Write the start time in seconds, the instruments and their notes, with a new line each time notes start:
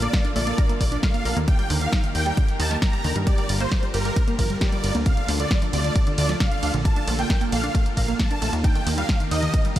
Already playing: supersaw synth D3 A#3 F4 A4
0.02 synth arpeggio sound A#3, supersaw synth D5, closed hi-hat
0.13 synth arpeggio sound A#3, kick, snare, closed hi-hat
0.25 synth arpeggio sound D4, closed hi-hat
0.36 analog synth bass A#1, synth arpeggio sound A3, supersaw synth D5, open hi-hat
0.47 synth arpeggio sound A#3, closed hi-hat
0.58 synth arpeggio sound A#4, kick, closed hi-hat
0.69 synth arpeggio sound A#3, closed hi-hat
0.81 analog synth bass A#1, synth arpeggio sound A#3, supersaw synth D5, kick, open hi-hat
0.92 synth arpeggio sound D4, closed hi-hat
1.03 synth arpeggio sound A3, supersaw synth F5, kick, snare, closed hi-hat
1.14 synth arpeggio sound A#3, closed hi-hat
1.25 analog synth bass A#1, synth arpeggio sound A#4, open hi-hat
1.37 analog synth bass D#2, synth arpeggio sound A#3, closed hi-hat
1.48 supersaw synth D#3 A#3 G4 A#4 G5, synth arpeggio sound D#3, kick, closed hi-hat
1.59 synth arpeggio sound G3, closed hi-hat
1.70 analog synth bass D#2, synth arpeggio sound D3, open hi-hat
1.81 synth arpeggio sound D#3, supersaw synth F5
1.92 synth arpeggio sound D#4, kick, snare, closed hi-hat
2.04 synth arpeggio sound D#3, closed hi-hat
2.15 analog synth bass D#2, synth arpeggio sound D#3, supersaw synth G5, open hi-hat
2.26 synth arpeggio sound G3, closed hi-hat
2.37 synth arpeggio sound D3, kick, closed hi-hat
2.48 synth arpeggio sound D#3, closed hi-hat
2.60 analog synth bass D#2, synth arpeggio sound D#4, supersaw synth A5, open hi-hat
2.71 synth arpeggio sound D#3, snare, closed hi-hat
2.82 synth arpeggio sound D#3, supersaw synth A#5, kick, snare, closed hi-hat
2.93 synth arpeggio sound G3, closed hi-hat
3.04 analog synth bass D#2, synth arpeggio sound D3, open hi-hat
3.16 analog synth bass G2, synth arpeggio sound D#3, closed hi-hat
3.27 supersaw synth D3 G3 F4 D5, synth arpeggio sound G4, kick, closed hi-hat, ride
3.38 synth arpeggio sound G3, closed hi-hat
3.49 analog synth bass G1, synth arpeggio sound G3, open hi-hat, ride
3.60 synth arpeggio sound A#3, supersaw synth C5
3.72 synth arpeggio sound F3, kick, snare, closed hi-hat, ride
3.83 synth arpeggio sound G3, closed hi-hat
3.94 analog synth bass G1, synth arpeggio sound G4, supersaw synth A#4, open hi-hat, ride
4.05 synth arpeggio sound G3, closed hi-hat
4.16 synth arpeggio sound G3, kick, closed hi-hat, ride
4.28 synth arpeggio sound A#3, closed hi-hat
4.39 analog synth bass G1, synth arpeggio sound F3, supersaw synth A#4, kick, open hi-hat, ride
4.50 synth arpeggio sound G3, closed hi-hat
4.61 synth arpeggio sound G4, supersaw synth D5, kick, snare, closed hi-hat, ride
4.72 synth arpeggio sound G3, closed hi-hat
4.84 analog synth bass G1, synth arpeggio sound G3, open hi-hat, ride
4.95 analog synth bass D2, synth arpeggio sound A#3, closed hi-hat
5.06 synth arpeggio sound C3, supersaw synth A3 A4 F5, kick, closed hi-hat, ride
5.17 synth arpeggio sound D3, closed hi-hat
5.28 analog synth bass D2, synth arpeggio sound D4, open hi-hat, ride
5.40 synth arpeggio sound D3, supersaw synth D5, closed hi-hat
5.51 synth arpeggio sound D3, kick, snare, closed hi-hat, ride
5.62 synth arpeggio sound F3, closed hi-hat
5.73 analog synth bass D2, synth arpeggio sound C3, supersaw synth D5, open hi-hat, ride
5.84 synth arpeggio sound D3, closed hi-hat
5.96 synth arpeggio sound D4, kick, closed hi-hat, ride
6.07 synth arpeggio sound D3, closed hi-hat
6.18 analog synth bass D2, synth arpeggio sound D3, supersaw synth D5, open hi-hat, ride
6.29 synth arpeggio sound F3, snare, closed hi-hat
6.40 synth arpeggio sound C3, supersaw synth F5, kick, snare, closed hi-hat, ride
6.52 synth arpeggio sound D3, closed hi-hat
6.63 analog synth bass D2, synth arpeggio sound D4, open hi-hat, ride
6.74 analog synth bass A#1, synth arpeggio sound D3, closed hi-hat
6.85 supersaw synth A#3 A5, synth arpeggio sound A#3, kick, closed hi-hat, ride
6.96 synth arpeggio sound D4, closed hi-hat
7.08 analog synth bass A#1, synth arpeggio sound A3, open hi-hat, ride
7.19 synth arpeggio sound A#3, supersaw synth G5, closed hi-hat
7.30 synth arpeggio sound A#4, kick, snare, closed hi-hat, ride
7.41 synth arpeggio sound A#3, closed hi-hat
7.52 analog synth bass A#1, synth arpeggio sound A#3, supersaw synth F5, open hi-hat, ride
7.63 synth arpeggio sound D4, closed hi-hat
7.75 synth arpeggio sound A3, kick, closed hi-hat, ride
7.86 synth arpeggio sound A#3, closed hi-hat
7.97 analog synth bass A#1, synth arpeggio sound A#4, supersaw synth F5, kick, open hi-hat, ride
8.08 synth arpeggio sound A#3, closed hi-hat
8.19 synth arpeggio sound A#3, supersaw synth A5, kick, snare, closed hi-hat, ride
8.31 synth arpeggio sound D4, closed hi-hat
8.42 analog synth bass A#1, synth arpeggio sound A3, open hi-hat, ride
8.53 analog synth bass D#2, synth arpeggio sound A#3, closed hi-hat
8.64 supersaw synth D#3 G4 A#4 G5, synth arpeggio sound D#4, kick, closed hi-hat, ride
8.75 synth arpeggio sound D#3, closed hi-hat
8.86 analog synth bass D#2, synth arpeggio sound D#3, open hi-hat, ride
8.98 synth arpeggio sound G3, supersaw synth F5, closed hi-hat
9.09 synth arpeggio sound D3, kick, snare, closed hi-hat, ride
9.20 synth arpeggio sound D#3, closed hi-hat
9.31 analog synth bass D#2, synth arpeggio sound D#4, supersaw synth D#5, open hi-hat, ride
9.43 synth arpeggio sound D#3, closed hi-hat
9.54 synth arpeggio sound D#3, kick, closed hi-hat, ride
9.65 synth arpeggio sound G3, closed hi-hat
9.76 synth arpeggio sound D3, supersaw synth F5, open hi-hat, ride